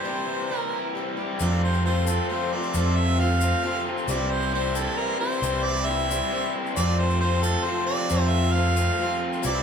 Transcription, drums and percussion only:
1.40 shaker
1.74 shaker
2.07 shaker
2.63 shaker
2.74 shaker
3.08 shaker
3.41 shaker
3.98 shaker
4.08 shaker
4.42 shaker
4.75 shaker
5.32 shaker
5.43 shaker
5.76 shaker
5.99 shaker
6.11 shaker
6.22 shaker
6.66 shaker
6.77 shaker
7.10 shaker
7.43 shaker
7.99 shaker
8.10 shaker
8.44 shaker
8.76 shaker
9.33 shaker
9.43 shaker

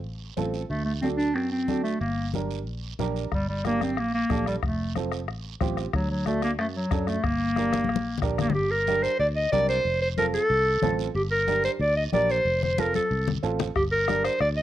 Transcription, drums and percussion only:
0.04 long guiro
0.37 high conga, short guiro
0.54 short guiro
0.71 long guiro
1.03 high conga, short guiro
1.20 short guiro
1.36 long guiro
1.68 high conga, short guiro
1.85 short guiro
2.01 long guiro
2.34 high conga, short guiro
2.51 short guiro
2.67 long guiro
2.99 high conga, short guiro
3.16 short guiro
3.32 bombo low, bombo rim, long guiro
3.65 bombo rim, high conga, short guiro
3.81 bombo rim, high conga, short guiro
3.97 bombo rim, long guiro
4.30 bombo low, bombo rim, high conga, short guiro
4.46 bombo rim, short guiro
4.63 bombo low, bombo rim, long guiro
4.95 bombo rim, high conga, short guiro
5.12 bombo rim, short guiro
5.28 bombo rim, long guiro
5.61 bombo low, bombo rim, high conga, short guiro
5.77 bombo rim, short guiro
5.93 bombo low, bombo rim, long guiro
6.26 bombo rim, high conga, short guiro
6.42 bombo rim, short guiro
6.59 bombo rim, long guiro
6.91 bombo low, bombo rim, high conga, short guiro
7.07 bombo rim, short guiro
7.24 bombo low, bombo rim, long guiro
7.56 bombo rim, high conga, short guiro
7.73 bombo rim, high conga, short guiro
7.84 high conga
7.89 bombo rim, long guiro
7.96 high conga
8.18 low conga
8.22 bombo low, bombo rim, short guiro
8.38 bombo rim, low conga, short guiro
8.50 low conga
8.55 high conga, long guiro
8.87 high conga, short guiro
9.04 short guiro
9.20 high conga, long guiro
9.53 high conga, short guiro
9.69 short guiro
9.85 high conga, long guiro
10.17 high conga, short guiro
10.34 short guiro
10.50 high conga, long guiro
10.82 high conga, low conga, short guiro
10.99 short guiro
11.15 high conga, long guiro
11.48 high conga, short guiro
11.64 short guiro
11.80 high conga, long guiro
12.13 high conga, short guiro
12.30 short guiro
12.46 high conga, long guiro
12.63 low conga
12.78 high conga, short guiro
12.94 high conga, short guiro
13.11 long guiro
13.28 low conga
13.43 short guiro
13.59 low conga, short guiro
13.76 bombo low, bombo rim, high conga, long guiro
14.08 bombo rim, high conga, short guiro
14.24 bombo rim, short guiro
14.40 bombo rim, high conga, long guiro

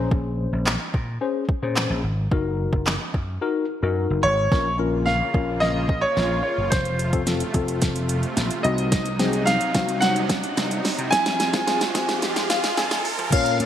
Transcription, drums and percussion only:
0.11 kick
0.66 snare, clap
0.94 kick
1.49 kick
1.76 snare, clap
2.32 kick
2.73 kick
2.87 snare, clap
3.14 kick
4.52 kick, snare
5.07 snare
5.34 kick
5.62 snare
5.89 kick
6.17 snare
6.72 kick, snare, closed hi-hat
6.85 closed hi-hat
6.99 closed hi-hat
7.13 kick, closed hi-hat
7.27 snare, closed hi-hat
7.40 closed hi-hat
7.54 kick, closed hi-hat
7.68 closed hi-hat
7.82 kick, snare, closed hi-hat
7.96 closed hi-hat
8.09 closed hi-hat
8.23 closed hi-hat
8.37 snare, closed hi-hat
8.51 closed hi-hat
8.64 closed hi-hat
8.78 closed hi-hat
8.92 kick, snare, closed hi-hat
9.05 closed hi-hat
9.19 snare, closed hi-hat
9.33 closed hi-hat
9.47 snare, closed hi-hat
9.61 closed hi-hat
9.74 kick, snare, closed hi-hat
9.89 closed hi-hat
10.02 snare, closed hi-hat
10.16 closed hi-hat
10.29 kick, snare, closed hi-hat
10.44 closed hi-hat
10.57 snare, closed hi-hat
10.71 closed hi-hat
10.85 snare, open hi-hat
10.99 closed hi-hat
11.12 kick, snare, closed hi-hat
11.26 snare, closed hi-hat
11.40 snare, closed hi-hat
11.53 kick, snare, closed hi-hat
11.67 snare, closed hi-hat
11.81 snare, closed hi-hat
11.95 kick, snare, closed hi-hat
12.09 snare, closed hi-hat
12.22 snare, closed hi-hat
12.36 snare, closed hi-hat
12.50 snare, closed hi-hat
12.64 snare, closed hi-hat
12.77 snare, closed hi-hat
12.91 snare, closed hi-hat
13.05 open hi-hat
13.19 closed hi-hat
13.32 kick, closed hi-hat, crash
13.46 closed hi-hat
13.60 closed hi-hat

